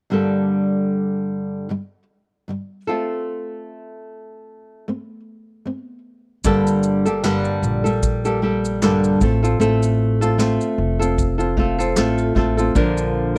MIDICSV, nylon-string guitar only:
0, 0, Header, 1, 2, 480
1, 0, Start_track
1, 0, Tempo, 789474
1, 69, Time_signature, 4, 2, 24, 8
1, 8135, End_track
2, 0, Start_track
2, 0, Title_t, "Nylon-string guitar"
2, 0, Program_c, 0, 24
2, 61, Note_on_c, 0, 43, 59
2, 66, Note_on_c, 0, 50, 60
2, 71, Note_on_c, 0, 55, 63
2, 73, Note_on_c, 0, 58, 61
2, 79, Note_on_c, 0, 67, 72
2, 83, Note_on_c, 0, 69, 68
2, 1021, Note_off_c, 0, 43, 0
2, 1028, Note_off_c, 0, 50, 0
2, 1028, Note_on_c, 0, 43, 46
2, 1034, Note_off_c, 0, 55, 0
2, 1035, Note_off_c, 0, 58, 0
2, 1035, Note_on_c, 0, 50, 53
2, 1037, Note_off_c, 0, 67, 0
2, 1040, Note_on_c, 0, 55, 57
2, 1046, Note_off_c, 0, 69, 0
2, 1228, Note_off_c, 0, 43, 0
2, 1231, Note_off_c, 0, 50, 0
2, 1234, Note_off_c, 0, 55, 0
2, 1507, Note_on_c, 0, 43, 45
2, 1514, Note_on_c, 0, 50, 51
2, 1523, Note_on_c, 0, 55, 56
2, 1708, Note_off_c, 0, 43, 0
2, 1712, Note_off_c, 0, 50, 0
2, 1716, Note_off_c, 0, 55, 0
2, 1747, Note_on_c, 0, 69, 60
2, 1756, Note_on_c, 0, 65, 53
2, 1760, Note_on_c, 0, 60, 51
2, 1763, Note_on_c, 0, 57, 44
2, 2959, Note_off_c, 0, 65, 0
2, 2961, Note_off_c, 0, 60, 0
2, 2964, Note_off_c, 0, 57, 0
2, 2967, Note_on_c, 0, 57, 53
2, 2974, Note_on_c, 0, 60, 60
2, 3160, Note_off_c, 0, 57, 0
2, 3163, Note_off_c, 0, 60, 0
2, 3438, Note_on_c, 0, 57, 51
2, 3446, Note_on_c, 0, 60, 59
2, 3636, Note_off_c, 0, 57, 0
2, 3639, Note_off_c, 0, 60, 0
2, 3875, Note_off_c, 0, 69, 0
2, 3921, Note_on_c, 0, 43, 73
2, 3923, Note_on_c, 0, 55, 82
2, 3924, Note_on_c, 0, 50, 75
2, 3926, Note_on_c, 0, 58, 82
2, 3927, Note_on_c, 0, 69, 85
2, 3928, Note_on_c, 0, 67, 80
2, 4282, Note_off_c, 0, 69, 0
2, 4289, Note_off_c, 0, 67, 0
2, 4289, Note_on_c, 0, 69, 55
2, 4291, Note_off_c, 0, 58, 0
2, 4292, Note_off_c, 0, 43, 0
2, 4293, Note_off_c, 0, 55, 0
2, 4294, Note_off_c, 0, 50, 0
2, 4296, Note_on_c, 0, 67, 54
2, 4298, Note_on_c, 0, 58, 45
2, 4301, Note_on_c, 0, 55, 44
2, 4395, Note_off_c, 0, 55, 0
2, 4396, Note_off_c, 0, 58, 0
2, 4398, Note_off_c, 0, 67, 0
2, 4398, Note_off_c, 0, 69, 0
2, 4398, Note_on_c, 0, 43, 79
2, 4399, Note_on_c, 0, 50, 81
2, 4403, Note_on_c, 0, 55, 86
2, 4404, Note_on_c, 0, 58, 84
2, 4405, Note_on_c, 0, 67, 78
2, 4405, Note_on_c, 0, 69, 84
2, 4759, Note_off_c, 0, 69, 0
2, 4766, Note_off_c, 0, 67, 0
2, 4767, Note_on_c, 0, 69, 53
2, 4768, Note_off_c, 0, 58, 0
2, 4770, Note_off_c, 0, 43, 0
2, 4771, Note_off_c, 0, 50, 0
2, 4773, Note_off_c, 0, 55, 0
2, 4773, Note_on_c, 0, 67, 48
2, 4775, Note_on_c, 0, 58, 47
2, 4780, Note_on_c, 0, 55, 43
2, 5009, Note_off_c, 0, 69, 0
2, 5012, Note_off_c, 0, 67, 0
2, 5013, Note_off_c, 0, 58, 0
2, 5015, Note_off_c, 0, 55, 0
2, 5016, Note_on_c, 0, 69, 60
2, 5020, Note_on_c, 0, 67, 50
2, 5024, Note_on_c, 0, 55, 44
2, 5025, Note_on_c, 0, 58, 50
2, 5112, Note_off_c, 0, 55, 0
2, 5116, Note_off_c, 0, 58, 0
2, 5119, Note_off_c, 0, 67, 0
2, 5120, Note_on_c, 0, 55, 58
2, 5121, Note_off_c, 0, 69, 0
2, 5124, Note_on_c, 0, 58, 56
2, 5126, Note_on_c, 0, 67, 60
2, 5132, Note_on_c, 0, 69, 64
2, 5359, Note_off_c, 0, 55, 0
2, 5361, Note_off_c, 0, 58, 0
2, 5362, Note_off_c, 0, 67, 0
2, 5364, Note_on_c, 0, 43, 79
2, 5365, Note_off_c, 0, 69, 0
2, 5366, Note_on_c, 0, 55, 74
2, 5368, Note_on_c, 0, 50, 74
2, 5368, Note_on_c, 0, 67, 80
2, 5371, Note_on_c, 0, 58, 86
2, 5371, Note_on_c, 0, 69, 85
2, 5599, Note_off_c, 0, 55, 0
2, 5601, Note_off_c, 0, 43, 0
2, 5601, Note_off_c, 0, 58, 0
2, 5601, Note_on_c, 0, 57, 56
2, 5603, Note_off_c, 0, 50, 0
2, 5603, Note_off_c, 0, 67, 0
2, 5604, Note_off_c, 0, 69, 0
2, 5604, Note_on_c, 0, 60, 66
2, 5609, Note_on_c, 0, 65, 68
2, 5612, Note_on_c, 0, 69, 68
2, 5724, Note_off_c, 0, 69, 0
2, 5730, Note_off_c, 0, 65, 0
2, 5731, Note_off_c, 0, 57, 0
2, 5731, Note_on_c, 0, 69, 55
2, 5733, Note_off_c, 0, 60, 0
2, 5737, Note_on_c, 0, 65, 53
2, 5742, Note_on_c, 0, 60, 45
2, 5828, Note_off_c, 0, 60, 0
2, 5834, Note_off_c, 0, 65, 0
2, 5835, Note_on_c, 0, 57, 76
2, 5836, Note_off_c, 0, 69, 0
2, 5836, Note_on_c, 0, 60, 76
2, 5842, Note_on_c, 0, 65, 79
2, 5843, Note_on_c, 0, 69, 81
2, 6202, Note_off_c, 0, 69, 0
2, 6207, Note_off_c, 0, 57, 0
2, 6207, Note_off_c, 0, 65, 0
2, 6208, Note_off_c, 0, 60, 0
2, 6209, Note_on_c, 0, 69, 59
2, 6215, Note_on_c, 0, 65, 52
2, 6221, Note_on_c, 0, 60, 44
2, 6307, Note_off_c, 0, 60, 0
2, 6311, Note_off_c, 0, 65, 0
2, 6311, Note_on_c, 0, 57, 72
2, 6312, Note_off_c, 0, 69, 0
2, 6315, Note_on_c, 0, 60, 80
2, 6318, Note_on_c, 0, 65, 81
2, 6319, Note_on_c, 0, 69, 82
2, 6677, Note_off_c, 0, 69, 0
2, 6684, Note_off_c, 0, 65, 0
2, 6685, Note_off_c, 0, 57, 0
2, 6685, Note_on_c, 0, 69, 57
2, 6686, Note_off_c, 0, 60, 0
2, 6691, Note_on_c, 0, 65, 54
2, 6697, Note_on_c, 0, 60, 47
2, 6912, Note_off_c, 0, 69, 0
2, 6917, Note_off_c, 0, 65, 0
2, 6919, Note_on_c, 0, 69, 55
2, 6925, Note_off_c, 0, 60, 0
2, 6925, Note_on_c, 0, 65, 52
2, 6932, Note_on_c, 0, 60, 46
2, 7030, Note_off_c, 0, 69, 0
2, 7033, Note_off_c, 0, 60, 0
2, 7033, Note_off_c, 0, 65, 0
2, 7034, Note_on_c, 0, 57, 60
2, 7040, Note_on_c, 0, 60, 65
2, 7043, Note_on_c, 0, 65, 65
2, 7049, Note_on_c, 0, 69, 68
2, 7159, Note_off_c, 0, 69, 0
2, 7166, Note_off_c, 0, 57, 0
2, 7166, Note_off_c, 0, 65, 0
2, 7167, Note_on_c, 0, 69, 48
2, 7169, Note_off_c, 0, 60, 0
2, 7173, Note_on_c, 0, 65, 45
2, 7178, Note_on_c, 0, 60, 41
2, 7274, Note_off_c, 0, 69, 0
2, 7275, Note_off_c, 0, 60, 0
2, 7276, Note_on_c, 0, 57, 73
2, 7277, Note_off_c, 0, 65, 0
2, 7283, Note_on_c, 0, 60, 77
2, 7283, Note_on_c, 0, 65, 83
2, 7286, Note_on_c, 0, 69, 86
2, 7501, Note_off_c, 0, 57, 0
2, 7507, Note_off_c, 0, 60, 0
2, 7509, Note_on_c, 0, 57, 65
2, 7510, Note_off_c, 0, 65, 0
2, 7515, Note_on_c, 0, 60, 66
2, 7516, Note_off_c, 0, 69, 0
2, 7517, Note_on_c, 0, 65, 60
2, 7523, Note_on_c, 0, 69, 65
2, 7637, Note_off_c, 0, 69, 0
2, 7642, Note_off_c, 0, 57, 0
2, 7644, Note_on_c, 0, 69, 50
2, 7645, Note_off_c, 0, 60, 0
2, 7647, Note_off_c, 0, 65, 0
2, 7654, Note_on_c, 0, 65, 52
2, 7659, Note_on_c, 0, 60, 45
2, 7752, Note_off_c, 0, 69, 0
2, 7752, Note_on_c, 0, 46, 77
2, 7756, Note_off_c, 0, 65, 0
2, 7756, Note_on_c, 0, 50, 81
2, 7757, Note_on_c, 0, 53, 81
2, 7758, Note_off_c, 0, 60, 0
2, 7758, Note_on_c, 0, 62, 81
2, 7760, Note_on_c, 0, 58, 89
2, 7762, Note_on_c, 0, 70, 81
2, 8113, Note_off_c, 0, 70, 0
2, 8116, Note_off_c, 0, 62, 0
2, 8120, Note_off_c, 0, 58, 0
2, 8122, Note_off_c, 0, 46, 0
2, 8124, Note_off_c, 0, 50, 0
2, 8124, Note_off_c, 0, 53, 0
2, 8135, End_track
0, 0, End_of_file